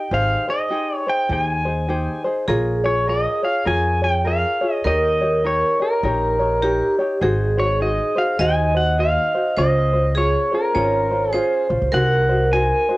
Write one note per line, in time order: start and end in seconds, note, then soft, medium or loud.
0.00 0.11 D#4 soft
0.00 0.11 D#5 soft
0.00 0.13 G5 medium
0.11 0.35 G#1 medium
0.11 0.48 D#4 medium
0.11 0.47 G4 medium
0.11 0.47 G#4 medium
0.11 0.46 C5 medium
0.11 0.50 F5 medium
0.48 0.70 D#4 soft
0.48 0.70 G#4 soft
0.48 0.71 C5 soft
0.48 0.96 D#5 medium
0.70 1.07 D#4 medium
0.70 1.06 G4 medium
0.70 1.06 G#4 medium
0.70 1.05 C5 medium
0.96 1.09 C#5 medium
1.07 1.30 D#4 soft
1.07 1.30 G#4 soft
1.07 1.30 C5 soft
1.07 1.32 G5 medium
1.29 2.06 D#2 medium
1.29 1.66 D#4 medium
1.29 1.66 G4 medium
1.29 1.65 G#4 medium
1.29 1.64 C5 medium
1.29 1.44 G5 medium
1.44 2.22 G#5 medium
1.65 1.88 D#4 soft
1.65 1.88 G#4 soft
1.65 1.89 C5 soft
1.88 2.25 D#4 medium
1.88 2.25 G4 medium
1.88 2.24 G#4 medium
1.88 2.23 C5 medium
2.24 2.48 D#4 soft
2.24 2.48 G#4 medium
2.24 2.48 C5 medium
2.48 3.25 A#1 medium
2.48 2.84 F4 medium
2.48 4.91 G#4 medium
2.48 2.83 G#4 medium
2.48 2.84 A#4 medium
2.48 2.83 C#5 medium
2.84 3.07 F4 soft
2.84 3.07 G#4 soft
2.84 3.07 C#5 medium
2.84 3.09 C#5 medium
3.07 3.44 F4 soft
3.07 3.43 G#4 medium
3.07 3.43 A#4 medium
3.07 3.42 C#5 medium
3.07 3.45 D#5 medium
3.43 3.65 F4 soft
3.43 3.65 G#4 medium
3.43 3.66 C#5 medium
3.43 3.68 F5 medium
3.65 4.43 F2 medium
3.65 4.02 F4 medium
3.65 4.01 G#4 medium
3.65 4.02 A#4 medium
3.65 4.00 C#5 medium
3.65 4.00 G#5 loud
4.02 4.24 F4 soft
4.02 4.25 G#4 soft
4.02 4.25 C#5 medium
4.02 4.27 G5 medium
4.24 4.61 F4 medium
4.24 4.60 G#4 medium
4.24 4.61 A#4 medium
4.24 4.60 C#5 medium
4.24 4.73 F5 medium
4.61 4.85 F4 soft
4.61 4.85 G#4 soft
4.61 4.84 C#5 medium
4.73 4.87 D#5 medium
4.84 5.61 D#2 medium
4.84 5.21 D#4 medium
4.84 5.21 G4 medium
4.84 6.67 A#4 medium
4.84 5.20 A#4 medium
4.84 5.19 C#5 medium
4.84 5.46 D#5 loud
5.21 5.43 D#4 soft
5.21 5.44 G4 soft
5.21 5.44 C#5 medium
5.44 5.80 D#4 medium
5.44 5.79 G4 medium
5.44 5.80 A#4 medium
5.44 5.78 C#5 medium
5.79 6.03 D#4 soft
5.79 6.03 G4 soft
5.79 6.95 A#4 medium
5.79 6.03 C#5 soft
6.03 6.80 A#1 medium
6.03 6.39 D#4 medium
6.03 6.39 G4 medium
6.03 6.39 A#4 medium
6.03 6.38 C#5 medium
6.39 6.62 D#4 soft
6.39 6.62 G4 soft
6.39 6.62 C#5 medium
6.62 6.98 D#4 medium
6.62 7.17 G4 medium
6.62 6.98 G4 medium
6.62 6.97 A#4 medium
6.62 6.98 C#5 medium
6.99 7.21 D#4 soft
6.99 7.22 G4 medium
6.99 7.21 C#5 medium
7.21 7.98 G#1 medium
7.21 7.57 D#4 medium
7.21 7.57 F#4 medium
7.21 7.57 G#4 medium
7.21 8.43 G#4 loud
7.21 7.56 C5 medium
7.57 7.79 D#4 soft
7.57 7.80 F#4 soft
7.57 7.80 C5 soft
7.57 7.82 C#5 medium
7.80 8.16 D#4 medium
7.80 8.16 F#4 medium
7.80 8.16 G#4 medium
7.80 8.14 C5 medium
7.80 8.18 D#5 medium
8.16 8.38 D#4 soft
8.16 8.39 F#4 medium
8.16 8.39 C5 medium
8.16 8.41 F5 medium
8.39 9.16 D#2 medium
8.39 8.75 D#4 medium
8.39 8.74 F#4 medium
8.39 8.75 G#4 medium
8.39 8.73 C5 medium
8.39 9.61 D#5 loud
8.39 8.76 G#5 loud
8.74 8.97 D#4 soft
8.74 8.98 F#4 soft
8.74 8.98 C5 soft
8.74 8.99 F#5 loud
8.98 9.34 D#4 medium
8.98 9.34 F#4 medium
8.98 9.34 G#4 medium
8.98 9.33 C5 medium
8.98 9.60 F5 loud
9.34 9.57 D#4 soft
9.34 9.58 F#4 soft
9.34 9.57 C5 medium
9.57 10.34 C#2 medium
9.57 9.93 C#4 medium
9.57 9.93 F4 medium
9.57 9.93 G#4 medium
9.57 10.12 C5 medium
9.57 9.92 C5 medium
9.57 10.18 D#5 medium
9.93 10.15 C#4 soft
9.93 10.16 F4 soft
9.93 10.16 C5 soft
10.15 10.52 C#4 medium
10.15 10.51 F4 medium
10.15 10.76 G#4 medium
10.15 10.52 G#4 medium
10.15 10.50 C5 medium
10.15 10.54 C#5 medium
10.51 10.74 C#4 soft
10.51 10.74 F4 medium
10.51 11.31 A#4 medium
10.51 10.74 C5 soft
10.74 11.37 G#1 medium
10.74 11.11 C#4 medium
10.74 11.10 F4 medium
10.74 11.10 G#4 medium
10.74 11.09 C5 medium
10.74 11.35 C#5 medium
11.11 11.32 C#4 soft
11.11 11.33 F4 soft
11.11 11.33 C5 medium
11.31 11.69 C#4 medium
11.31 11.69 F4 medium
11.31 11.67 G#4 medium
11.31 11.69 G#4 medium
11.31 11.94 C5 loud
11.31 11.68 C5 medium
11.69 11.80 A#1 medium
11.69 11.93 C#4 soft
11.69 11.93 F4 medium
11.69 11.92 C5 soft
11.82 11.92 C2 medium
11.92 12.70 C2 medium
11.92 12.29 D#4 medium
11.92 12.29 F#4 medium
11.92 12.28 G#4 medium
11.92 12.97 A#4 loud
11.92 12.28 C5 medium
11.92 12.54 F#5 medium
12.29 12.52 D#4 soft
12.29 12.52 F#4 soft
12.29 12.52 C5 medium
12.52 12.88 D#4 medium
12.52 12.88 F#4 medium
12.52 12.88 G#4 medium
12.52 12.87 C5 medium
12.52 12.97 G#5 medium
12.89 12.97 D#4 soft
12.89 12.97 F#4 soft
12.89 12.97 C5 medium